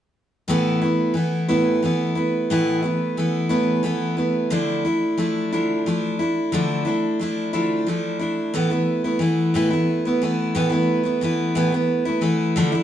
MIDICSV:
0, 0, Header, 1, 2, 480
1, 0, Start_track
1, 0, Tempo, 671141
1, 351, Time_signature, 6, 3, 24, 8
1, 9177, End_track
2, 0, Start_track
2, 0, Title_t, "Steel-string acoustic guitar"
2, 0, Program_c, 0, 25
2, 341, Note_on_c, 0, 45, 76
2, 344, Note_on_c, 0, 52, 73
2, 352, Note_on_c, 0, 57, 84
2, 354, Note_on_c, 0, 59, 84
2, 360, Note_on_c, 0, 64, 87
2, 575, Note_off_c, 0, 64, 0
2, 583, Note_on_c, 0, 64, 53
2, 586, Note_off_c, 0, 45, 0
2, 586, Note_off_c, 0, 59, 0
2, 587, Note_off_c, 0, 52, 0
2, 591, Note_off_c, 0, 57, 0
2, 594, Note_on_c, 0, 59, 47
2, 605, Note_on_c, 0, 57, 40
2, 813, Note_off_c, 0, 57, 0
2, 813, Note_on_c, 0, 52, 56
2, 821, Note_on_c, 0, 57, 51
2, 825, Note_off_c, 0, 59, 0
2, 827, Note_off_c, 0, 64, 0
2, 834, Note_on_c, 0, 59, 62
2, 836, Note_on_c, 0, 64, 65
2, 1053, Note_off_c, 0, 64, 0
2, 1057, Note_off_c, 0, 57, 0
2, 1057, Note_off_c, 0, 59, 0
2, 1062, Note_off_c, 0, 52, 0
2, 1062, Note_on_c, 0, 64, 68
2, 1066, Note_on_c, 0, 57, 61
2, 1066, Note_on_c, 0, 59, 60
2, 1075, Note_on_c, 0, 52, 54
2, 1076, Note_on_c, 0, 45, 61
2, 1297, Note_off_c, 0, 52, 0
2, 1305, Note_off_c, 0, 57, 0
2, 1305, Note_on_c, 0, 52, 61
2, 1306, Note_off_c, 0, 64, 0
2, 1308, Note_off_c, 0, 59, 0
2, 1314, Note_off_c, 0, 45, 0
2, 1314, Note_on_c, 0, 57, 60
2, 1320, Note_on_c, 0, 59, 68
2, 1326, Note_on_c, 0, 64, 63
2, 1531, Note_off_c, 0, 64, 0
2, 1539, Note_on_c, 0, 64, 49
2, 1545, Note_off_c, 0, 59, 0
2, 1548, Note_off_c, 0, 52, 0
2, 1548, Note_off_c, 0, 57, 0
2, 1554, Note_on_c, 0, 59, 47
2, 1557, Note_on_c, 0, 57, 40
2, 1785, Note_off_c, 0, 64, 0
2, 1787, Note_off_c, 0, 59, 0
2, 1788, Note_off_c, 0, 57, 0
2, 1789, Note_on_c, 0, 45, 83
2, 1791, Note_on_c, 0, 52, 71
2, 1796, Note_on_c, 0, 57, 92
2, 1796, Note_on_c, 0, 59, 86
2, 1802, Note_on_c, 0, 64, 91
2, 2011, Note_off_c, 0, 64, 0
2, 2020, Note_on_c, 0, 64, 55
2, 2022, Note_off_c, 0, 59, 0
2, 2030, Note_off_c, 0, 45, 0
2, 2031, Note_off_c, 0, 52, 0
2, 2031, Note_on_c, 0, 59, 49
2, 2034, Note_off_c, 0, 57, 0
2, 2042, Note_on_c, 0, 57, 44
2, 2264, Note_off_c, 0, 57, 0
2, 2265, Note_off_c, 0, 64, 0
2, 2269, Note_on_c, 0, 52, 56
2, 2271, Note_off_c, 0, 59, 0
2, 2272, Note_on_c, 0, 57, 57
2, 2283, Note_on_c, 0, 59, 64
2, 2285, Note_on_c, 0, 64, 68
2, 2489, Note_off_c, 0, 64, 0
2, 2495, Note_off_c, 0, 59, 0
2, 2498, Note_off_c, 0, 57, 0
2, 2498, Note_on_c, 0, 64, 71
2, 2503, Note_off_c, 0, 52, 0
2, 2504, Note_on_c, 0, 59, 62
2, 2506, Note_on_c, 0, 57, 60
2, 2512, Note_on_c, 0, 52, 54
2, 2516, Note_on_c, 0, 45, 58
2, 2729, Note_off_c, 0, 52, 0
2, 2736, Note_off_c, 0, 57, 0
2, 2738, Note_on_c, 0, 52, 60
2, 2739, Note_off_c, 0, 59, 0
2, 2744, Note_on_c, 0, 57, 62
2, 2745, Note_off_c, 0, 64, 0
2, 2748, Note_on_c, 0, 59, 69
2, 2754, Note_off_c, 0, 45, 0
2, 2758, Note_on_c, 0, 64, 69
2, 2972, Note_off_c, 0, 64, 0
2, 2980, Note_on_c, 0, 64, 50
2, 2982, Note_off_c, 0, 59, 0
2, 2984, Note_off_c, 0, 52, 0
2, 2988, Note_off_c, 0, 57, 0
2, 2990, Note_on_c, 0, 59, 48
2, 2998, Note_on_c, 0, 57, 46
2, 3221, Note_off_c, 0, 57, 0
2, 3221, Note_on_c, 0, 50, 82
2, 3223, Note_on_c, 0, 53, 91
2, 3226, Note_off_c, 0, 64, 0
2, 3229, Note_on_c, 0, 57, 87
2, 3230, Note_off_c, 0, 59, 0
2, 3232, Note_on_c, 0, 62, 90
2, 3237, Note_on_c, 0, 64, 94
2, 3458, Note_off_c, 0, 64, 0
2, 3466, Note_off_c, 0, 50, 0
2, 3467, Note_off_c, 0, 53, 0
2, 3467, Note_off_c, 0, 62, 0
2, 3467, Note_on_c, 0, 64, 53
2, 3470, Note_off_c, 0, 57, 0
2, 3476, Note_on_c, 0, 62, 50
2, 3485, Note_on_c, 0, 57, 43
2, 3698, Note_off_c, 0, 57, 0
2, 3701, Note_on_c, 0, 53, 57
2, 3705, Note_off_c, 0, 62, 0
2, 3707, Note_on_c, 0, 57, 64
2, 3709, Note_off_c, 0, 64, 0
2, 3713, Note_on_c, 0, 62, 64
2, 3717, Note_on_c, 0, 64, 65
2, 3943, Note_off_c, 0, 64, 0
2, 3946, Note_off_c, 0, 53, 0
2, 3948, Note_off_c, 0, 62, 0
2, 3949, Note_off_c, 0, 57, 0
2, 3951, Note_on_c, 0, 64, 68
2, 3956, Note_on_c, 0, 62, 64
2, 3962, Note_on_c, 0, 57, 58
2, 3964, Note_on_c, 0, 53, 60
2, 3967, Note_on_c, 0, 50, 51
2, 4184, Note_off_c, 0, 53, 0
2, 4191, Note_off_c, 0, 57, 0
2, 4191, Note_off_c, 0, 64, 0
2, 4193, Note_on_c, 0, 53, 60
2, 4194, Note_off_c, 0, 62, 0
2, 4199, Note_off_c, 0, 50, 0
2, 4200, Note_on_c, 0, 57, 57
2, 4206, Note_on_c, 0, 62, 67
2, 4210, Note_on_c, 0, 64, 70
2, 4419, Note_off_c, 0, 64, 0
2, 4428, Note_on_c, 0, 64, 57
2, 4432, Note_off_c, 0, 53, 0
2, 4434, Note_off_c, 0, 62, 0
2, 4435, Note_off_c, 0, 57, 0
2, 4442, Note_on_c, 0, 62, 49
2, 4452, Note_on_c, 0, 57, 42
2, 4664, Note_on_c, 0, 50, 87
2, 4668, Note_off_c, 0, 57, 0
2, 4669, Note_off_c, 0, 64, 0
2, 4672, Note_off_c, 0, 62, 0
2, 4673, Note_on_c, 0, 53, 76
2, 4677, Note_on_c, 0, 57, 87
2, 4680, Note_on_c, 0, 62, 87
2, 4681, Note_on_c, 0, 64, 86
2, 4889, Note_off_c, 0, 64, 0
2, 4898, Note_on_c, 0, 64, 58
2, 4902, Note_off_c, 0, 62, 0
2, 4907, Note_off_c, 0, 50, 0
2, 4911, Note_on_c, 0, 62, 50
2, 4912, Note_off_c, 0, 53, 0
2, 4914, Note_off_c, 0, 57, 0
2, 4923, Note_on_c, 0, 57, 45
2, 5144, Note_off_c, 0, 64, 0
2, 5145, Note_on_c, 0, 53, 57
2, 5147, Note_off_c, 0, 57, 0
2, 5151, Note_off_c, 0, 62, 0
2, 5155, Note_on_c, 0, 57, 59
2, 5160, Note_on_c, 0, 62, 68
2, 5168, Note_on_c, 0, 64, 66
2, 5378, Note_off_c, 0, 64, 0
2, 5382, Note_off_c, 0, 62, 0
2, 5386, Note_off_c, 0, 57, 0
2, 5386, Note_on_c, 0, 64, 67
2, 5388, Note_off_c, 0, 53, 0
2, 5390, Note_on_c, 0, 62, 68
2, 5395, Note_on_c, 0, 57, 66
2, 5397, Note_on_c, 0, 53, 61
2, 5400, Note_on_c, 0, 50, 56
2, 5617, Note_off_c, 0, 53, 0
2, 5625, Note_on_c, 0, 53, 63
2, 5628, Note_off_c, 0, 64, 0
2, 5629, Note_off_c, 0, 57, 0
2, 5631, Note_off_c, 0, 62, 0
2, 5635, Note_off_c, 0, 50, 0
2, 5638, Note_on_c, 0, 57, 64
2, 5643, Note_on_c, 0, 62, 66
2, 5646, Note_on_c, 0, 64, 65
2, 5852, Note_off_c, 0, 64, 0
2, 5860, Note_on_c, 0, 64, 59
2, 5865, Note_off_c, 0, 62, 0
2, 5868, Note_off_c, 0, 53, 0
2, 5874, Note_off_c, 0, 57, 0
2, 5874, Note_on_c, 0, 62, 53
2, 5882, Note_on_c, 0, 57, 41
2, 6104, Note_off_c, 0, 57, 0
2, 6105, Note_off_c, 0, 64, 0
2, 6105, Note_on_c, 0, 45, 83
2, 6109, Note_on_c, 0, 52, 78
2, 6112, Note_off_c, 0, 62, 0
2, 6113, Note_on_c, 0, 57, 79
2, 6116, Note_on_c, 0, 64, 86
2, 6118, Note_on_c, 0, 59, 96
2, 6214, Note_off_c, 0, 64, 0
2, 6223, Note_off_c, 0, 59, 0
2, 6223, Note_on_c, 0, 64, 52
2, 6228, Note_off_c, 0, 45, 0
2, 6230, Note_off_c, 0, 52, 0
2, 6231, Note_on_c, 0, 59, 53
2, 6232, Note_off_c, 0, 57, 0
2, 6242, Note_on_c, 0, 57, 47
2, 6459, Note_off_c, 0, 64, 0
2, 6466, Note_off_c, 0, 59, 0
2, 6467, Note_on_c, 0, 64, 53
2, 6474, Note_on_c, 0, 59, 45
2, 6476, Note_off_c, 0, 57, 0
2, 6486, Note_on_c, 0, 57, 43
2, 6573, Note_on_c, 0, 52, 64
2, 6577, Note_off_c, 0, 57, 0
2, 6582, Note_off_c, 0, 59, 0
2, 6586, Note_off_c, 0, 64, 0
2, 6586, Note_on_c, 0, 57, 61
2, 6590, Note_on_c, 0, 59, 64
2, 6595, Note_on_c, 0, 64, 66
2, 6821, Note_off_c, 0, 52, 0
2, 6823, Note_on_c, 0, 45, 84
2, 6824, Note_off_c, 0, 57, 0
2, 6829, Note_off_c, 0, 64, 0
2, 6829, Note_on_c, 0, 52, 77
2, 6830, Note_off_c, 0, 59, 0
2, 6833, Note_on_c, 0, 57, 80
2, 6838, Note_on_c, 0, 64, 82
2, 6839, Note_on_c, 0, 59, 79
2, 6932, Note_off_c, 0, 64, 0
2, 6940, Note_on_c, 0, 64, 56
2, 6946, Note_off_c, 0, 45, 0
2, 6949, Note_off_c, 0, 52, 0
2, 6950, Note_off_c, 0, 59, 0
2, 6951, Note_off_c, 0, 57, 0
2, 6959, Note_on_c, 0, 59, 46
2, 6961, Note_on_c, 0, 57, 47
2, 7181, Note_off_c, 0, 64, 0
2, 7189, Note_on_c, 0, 64, 54
2, 7191, Note_off_c, 0, 59, 0
2, 7195, Note_off_c, 0, 57, 0
2, 7200, Note_on_c, 0, 59, 56
2, 7209, Note_on_c, 0, 57, 42
2, 7306, Note_off_c, 0, 57, 0
2, 7306, Note_on_c, 0, 52, 64
2, 7309, Note_off_c, 0, 64, 0
2, 7310, Note_off_c, 0, 59, 0
2, 7314, Note_on_c, 0, 57, 61
2, 7319, Note_on_c, 0, 59, 63
2, 7324, Note_on_c, 0, 64, 71
2, 7537, Note_off_c, 0, 52, 0
2, 7539, Note_off_c, 0, 57, 0
2, 7543, Note_on_c, 0, 45, 82
2, 7545, Note_off_c, 0, 59, 0
2, 7545, Note_on_c, 0, 52, 80
2, 7548, Note_on_c, 0, 57, 85
2, 7550, Note_off_c, 0, 64, 0
2, 7553, Note_on_c, 0, 59, 89
2, 7559, Note_on_c, 0, 64, 83
2, 7641, Note_off_c, 0, 64, 0
2, 7650, Note_on_c, 0, 64, 62
2, 7657, Note_off_c, 0, 59, 0
2, 7666, Note_off_c, 0, 45, 0
2, 7666, Note_on_c, 0, 59, 52
2, 7667, Note_off_c, 0, 52, 0
2, 7668, Note_off_c, 0, 57, 0
2, 7678, Note_on_c, 0, 57, 46
2, 7883, Note_off_c, 0, 64, 0
2, 7892, Note_on_c, 0, 64, 50
2, 7895, Note_off_c, 0, 59, 0
2, 7903, Note_off_c, 0, 57, 0
2, 7903, Note_on_c, 0, 59, 52
2, 7911, Note_on_c, 0, 57, 43
2, 8019, Note_on_c, 0, 52, 60
2, 8020, Note_off_c, 0, 57, 0
2, 8020, Note_off_c, 0, 64, 0
2, 8026, Note_off_c, 0, 59, 0
2, 8028, Note_on_c, 0, 57, 65
2, 8034, Note_on_c, 0, 59, 68
2, 8041, Note_on_c, 0, 64, 70
2, 8254, Note_off_c, 0, 52, 0
2, 8261, Note_on_c, 0, 45, 76
2, 8262, Note_off_c, 0, 57, 0
2, 8263, Note_on_c, 0, 52, 81
2, 8264, Note_off_c, 0, 59, 0
2, 8266, Note_off_c, 0, 64, 0
2, 8271, Note_on_c, 0, 57, 80
2, 8273, Note_on_c, 0, 59, 78
2, 8274, Note_on_c, 0, 64, 90
2, 8375, Note_off_c, 0, 64, 0
2, 8384, Note_off_c, 0, 45, 0
2, 8384, Note_on_c, 0, 64, 53
2, 8385, Note_off_c, 0, 52, 0
2, 8388, Note_off_c, 0, 59, 0
2, 8389, Note_off_c, 0, 57, 0
2, 8397, Note_on_c, 0, 59, 54
2, 8403, Note_on_c, 0, 57, 45
2, 8611, Note_off_c, 0, 64, 0
2, 8620, Note_on_c, 0, 64, 60
2, 8622, Note_off_c, 0, 59, 0
2, 8630, Note_on_c, 0, 59, 51
2, 8635, Note_off_c, 0, 57, 0
2, 8643, Note_on_c, 0, 57, 42
2, 8729, Note_off_c, 0, 57, 0
2, 8733, Note_on_c, 0, 52, 65
2, 8736, Note_off_c, 0, 59, 0
2, 8738, Note_on_c, 0, 57, 65
2, 8741, Note_off_c, 0, 64, 0
2, 8744, Note_on_c, 0, 59, 65
2, 8750, Note_on_c, 0, 64, 64
2, 8980, Note_off_c, 0, 52, 0
2, 8981, Note_on_c, 0, 50, 88
2, 8982, Note_off_c, 0, 57, 0
2, 8986, Note_off_c, 0, 59, 0
2, 8988, Note_off_c, 0, 64, 0
2, 8988, Note_on_c, 0, 53, 89
2, 8989, Note_on_c, 0, 62, 84
2, 8990, Note_on_c, 0, 57, 92
2, 8998, Note_on_c, 0, 64, 90
2, 9089, Note_off_c, 0, 64, 0
2, 9097, Note_on_c, 0, 64, 62
2, 9104, Note_off_c, 0, 50, 0
2, 9104, Note_off_c, 0, 62, 0
2, 9108, Note_off_c, 0, 53, 0
2, 9108, Note_off_c, 0, 57, 0
2, 9113, Note_on_c, 0, 62, 56
2, 9118, Note_on_c, 0, 57, 52
2, 9177, Note_off_c, 0, 57, 0
2, 9177, Note_off_c, 0, 62, 0
2, 9177, Note_off_c, 0, 64, 0
2, 9177, End_track
0, 0, End_of_file